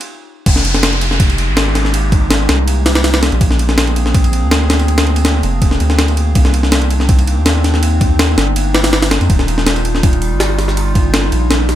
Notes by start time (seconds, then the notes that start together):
0.01 ride
0.46 F1 G#3 A#3 D#4 G4, kick, crash, ride, downlifter
0.56 snare
0.65 ride
0.74 snare
0.83 snare, ride
0.93 ride
1.01 ride
1.11 snare
1.20 kick, ride
1.30 ride
1.38 ride
1.48 G#1
1.57 snare, ride
1.75 snare, ride
1.85 snare
1.94 ride
2.12 kick, ride
2.31 snare, ride
2.49 C2, snare, ride
2.68 ride
2.86 snare, ride
2.95 snare, ride
3.04 snare, ride
3.14 snare, ride
3.23 snare, ride
3.32 A#1, ride
3.41 A#1 C4 D4 G#4, kick, ride
3.51 snare
3.59 ride
3.69 snare
3.78 snare, ride
3.87 ride
3.96 ride
4.06 snare
4.15 kick, ride
4.24 ride
4.33 ride
4.42 D2
4.51 snare, ride
4.70 snare, ride
4.79 ride
4.88 ride
4.98 snare, ride
5.07 ride
5.16 ride
5.25 snare, ride
5.43 F1, ride
5.62 kick, ride
5.71 snare
5.80 D2, ride
5.90 snare
5.99 snare, ride
6.08 ride
6.17 ride
6.35 C2 C4 D#4, kick, ride
6.45 snare
6.54 ride
6.63 snare
6.72 snare, ride
6.82 ride
6.90 ride
7.00 snare
7.09 kick, ride
7.19 ride
7.27 ride
7.37 D#2
7.46 snare, ride
7.64 snare, ride
7.74 snare
7.83 ride
8.01 kick, ride
8.19 snare, ride
8.37 G1, snare, ride
8.56 ride
8.75 snare, ride
8.84 snare, ride
8.93 snare, ride
9.02 snare, ride
9.11 snare, ride
9.21 F2, ride
9.30 D#1 G3 F4, kick, ride
9.39 snare
9.48 ride
9.58 snare
9.67 snare, ride
9.76 ride
9.85 ride
9.95 snare
10.03 kick, ride
10.13 ride
10.22 ride
10.31 G1
10.40 snare, ride
10.59 snare, ride
10.68 snare
10.77 ride
10.95 kick, ride
11.14 snare, ride
11.32 A#1, ride
11.51 snare, ride
11.69 snare, ride